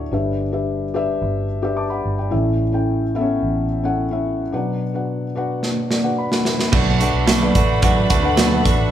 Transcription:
Already playing: D4 F#4 A4 C#5 E5
0.11 G1 G2 D3 D4 G4 B4 E5
0.52 D4 G4 B4 E5
0.94 D4 G4 B4 E5
1.22 G1
1.62 D4 G4 B4 E5
1.77 A5 D6
1.90 F#5 B5
2.05 G1
2.18 D5 G5
2.30 A1 A2 E3 C#4 E4 A4 E5
2.72 C#4 E4 A4 G5
3.15 B3 E4 A4 E5
3.21 C#4
3.43 A1
3.83 C#4 E4 A4 F#5
4.11 C#4 E4 A4 E5
4.52 B2 F#3 D4 F#4 B4 F#5
4.94 D4 F#4 B4 F#5
5.35 D4 F#4 B4 F#5
5.63 snare
5.91 D5, snare
6.03 D4 F#4 B4 F#5
6.18 B5
6.31 D4 F#4 B4 F#5, snare
6.45 snare
6.59 snare
6.72 B1 B2 F#3 A3 D4 F#4 A4 B4 F#5 B5, kick, crash
7.00 A3 D4 F#4 A4 B4 F#5, closed hi-hat
7.14 B1
7.26 B2 F#3 A3 D4 F#4, snare, closed hi-hat
7.41 D4 A4 B4 D5
7.55 A1 A3 D4 F#4, kick, closed hi-hat
7.82 F#3 A3 D4 F#4 A4 B4 F#5, kick, closed hi-hat
8.10 D2 A3 D4 F#4, kick, closed hi-hat
8.23 D4 A4 B4 F#5
8.36 B2 F#3 A3 D4 F#4, snare, closed hi-hat
8.51 D4 A4 B4 F#5
8.64 A1 A3 D4 F#4, kick, closed hi-hat

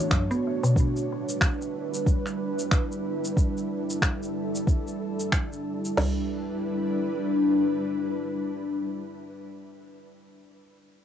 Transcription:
Already playing: E3 A3 D4 F#4 C#5
0.11 F#2, finger snap, kick, cabasa
0.31 B3, cabasa
0.63 B2, cabasa
0.76 G3 E4 B4, kick, cabasa
0.97 cabasa
1.29 cabasa
1.41 finger snap, kick, cabasa
1.62 cabasa
1.94 cabasa
2.06 kick, cabasa
2.26 finger snap, cabasa
2.59 cabasa
2.71 finger snap, kick, cabasa
2.92 cabasa
3.25 cabasa
3.37 A4, kick, cabasa
3.57 cabasa
3.90 cabasa
4.02 finger snap, kick, cabasa
4.23 cabasa
4.55 cabasa
4.67 kick, cabasa
4.87 cabasa
5.20 cabasa
5.32 finger snap, kick, cabasa
5.53 cabasa
5.85 cabasa
5.97 G3 D4 E4 B4, snare, floor tom, crash

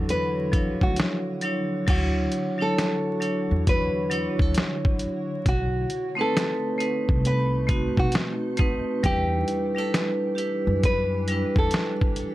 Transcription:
Already playing: E2 D3 F#3 D4 E4 F#4 A4 C#5
0.09 B4, closed hi-hat
0.52 F3 D4 E4 C#5, kick, closed hi-hat
0.58 F#3
0.81 D2 F#4, kick
0.96 snare, closed hi-hat
1.41 F#3 D4 E4, closed hi-hat
1.46 C#5
1.87 D2 D3 F#3 D4 E4 F#4 C#5, kick, closed hi-hat, crash
2.32 closed hi-hat
2.58 F#3 D4 E4 A4 C#5
2.78 snare, closed hi-hat
3.20 F#3 D4 E4 C#5, closed hi-hat
3.51 E2
3.67 B4, kick, closed hi-hat
4.10 F#3 D4 E4 C#5, closed hi-hat
4.39 D2 A4, kick
4.54 snare, closed hi-hat
4.85 kick
4.99 closed hi-hat
5.45 B1 B2 A3 D#4 F#4, kick, closed hi-hat
5.90 closed hi-hat
6.15 A3 C4 D#4 B4
6.21 A4
6.37 snare, closed hi-hat
6.78 A3 C4 D#4 B4, closed hi-hat
7.09 C2, kick
7.25 B4, closed hi-hat
7.67 A3 C4 D#4 F#4, kick, closed hi-hat
7.97 B1 F#4, kick
8.12 snare, closed hi-hat
8.57 A3 C4 D#4, kick, closed hi-hat
8.61 B4
9.03 E2 E3 G3 D4 E4 G4 B4, kick, closed hi-hat
9.48 closed hi-hat
9.75 G3 D4 E4 A4 B4
9.94 snare, closed hi-hat
10.35 D4 E4 G4 B4, closed hi-hat
10.67 F#2
10.83 B4, kick, closed hi-hat
11.28 G3 D4 E4, closed hi-hat
11.32 B4
11.56 E2 A4, kick
11.71 snare, closed hi-hat
12.01 kick
12.16 closed hi-hat

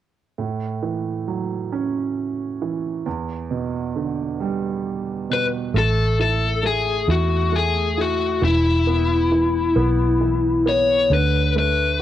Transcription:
0.38 A2
0.82 E3
1.27 F#3
1.72 C#4
2.62 E3
3.06 E2
3.51 B2
3.96 D3
4.40 G3
5.30 B2 B4
5.74 A1 A3
5.78 A4
6.19 E4 A4
6.63 A3 G#4
7.08 E2 E4 F#4
7.52 A3 G#4
7.97 E4 F#4
8.42 E1 E3 E4
8.87 B3
9.32 E3
9.76 B1 B3
10.21 E3
10.66 B3 C#5
11.10 D2 D3 B4
11.56 A3 B4

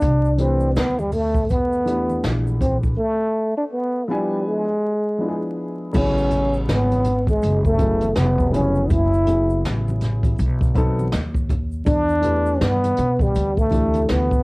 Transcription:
Already playing: D4
0.00 C2, kick, closed hi-hat, shaker
0.25 shaker
0.38 E3 A3 C4 D4 G4 B4, closed hi-hat, shaker
0.60 shaker
0.76 D2 B3, snare, closed hi-hat, shaker
0.99 G3, high conga, shaker
1.12 A3, open hi-hat, low conga, shaker
1.35 kick, shaker
1.49 E2 B3, kick, closed hi-hat, shaker
1.73 shaker
1.85 E3 A3 D4 G4 B4, closed hi-hat, shaker
2.09 high conga, shaker
2.24 A#1, snare, closed hi-hat, shaker
2.47 shaker
2.61 C4, kick, closed hi-hat, high conga, low conga, shaker
2.83 kick, shaker
2.98 A3
3.57 D4
3.72 B3
4.08 F3 G3 B3 D4 E4 G#5
4.47 G#3
5.18 F3 B3 D4 E4 F4
5.28 G#4
5.93 A1 C#3 F#3 B3 C#4 E4 G#4, kick, crash, shaker
6.18 shaker
6.31 closed hi-hat, low conga, shaker
6.53 shaker
6.69 G#1 B3, snare, closed hi-hat, high conga, shaker
6.91 closed hi-hat, high conga, shaker
7.04 closed hi-hat, low conga, shaker
7.27 G#3, kick, high conga, shaker
7.42 F#1, closed hi-hat, shaker
7.65 A3, kick, shaker
7.78 C#3 F#3 B3 E4 G#4, kick, closed hi-hat, shaker
8.01 closed hi-hat, high conga, shaker
8.15 F1 B3, snare, closed hi-hat, shaker
8.38 kick, shaker
8.52 C#3 F#3 B3 C#4 E4 G#4, closed hi-hat, high conga, low conga, shaker
8.76 shaker
8.90 F#1 E4, kick, closed hi-hat, shaker
9.14 shaker
9.26 C#3 F#3 B3 E4 G#4, closed hi-hat, low conga, shaker
9.50 shaker
9.65 A1, snare, closed hi-hat, high conga, shaker
9.88 high conga, shaker
10.01 snare, closed hi-hat, low conga, shaker
10.23 kick, closed hi-hat, high conga, shaker
10.38 B1, closed hi-hat, shaker
10.61 kick, shaker
10.74 F#3 B3 C4 D#4 A4, kick, closed hi-hat, shaker
10.99 high conga, shaker
11.12 D#2, snare, closed hi-hat, shaker
11.35 kick, shaker
11.49 kick, closed hi-hat, high conga, low conga, shaker
11.72 shaker
11.86 E2 D4, kick, closed hi-hat, shaker
12.10 shaker
12.22 E3 A3 D4 G4 B4, closed hi-hat, low conga, shaker
12.46 shaker
12.61 G2 B3, snare, closed hi-hat, high conga, shaker
12.84 closed hi-hat, high conga, shaker
12.97 B2, closed hi-hat, low conga, shaker
13.19 G3, kick, high conga, shaker
13.35 D2, closed hi-hat, shaker
13.57 A3, kick, shaker
13.71 E3 A3 D4 G4 A4, kick, closed hi-hat, shaker
13.93 closed hi-hat, high conga, shaker
14.09 D2 B3, snare, closed hi-hat, shaker
14.31 kick, shaker

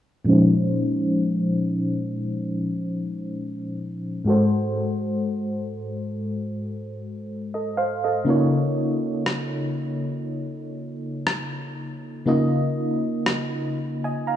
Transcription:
0.25 A#2 F3 G#3 C#4
0.29 D#4 C5
4.25 G#2 G#3 F#4
4.29 A4 C5
7.54 A4 D#5
7.77 C5 F5
8.04 A4 D#5
8.25 C#3 A#3 D#4
8.29 F4 C#5
9.26 cross-stick
11.27 cross-stick
12.26 C#3 A#3 D#4 F4 D#5
13.26 cross-stick
14.04 D#5 G#5
14.27 F5 A#5

